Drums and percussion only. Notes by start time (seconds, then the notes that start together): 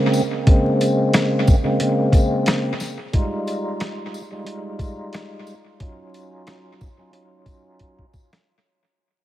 0.14 tambourine
0.47 kick, closed hi-hat
0.81 closed hi-hat, tambourine
1.14 cross-stick, snare, closed hi-hat
1.48 kick, tambourine
1.80 closed hi-hat
2.12 kick, closed hi-hat, tambourine
2.46 cross-stick, snare, closed hi-hat
2.80 snare, tambourine
3.13 kick, closed hi-hat
3.47 closed hi-hat, tambourine
3.80 cross-stick, snare, closed hi-hat
4.14 tambourine
4.47 closed hi-hat
4.79 kick, closed hi-hat, tambourine
5.13 cross-stick, snare, closed hi-hat
5.47 tambourine
5.80 kick, closed hi-hat
6.14 closed hi-hat, tambourine
6.47 cross-stick, snare, closed hi-hat
6.81 kick, tambourine
7.13 closed hi-hat
7.46 kick, closed hi-hat, tambourine
7.79 kick, closed hi-hat
7.99 kick
8.13 kick, tambourine
8.33 snare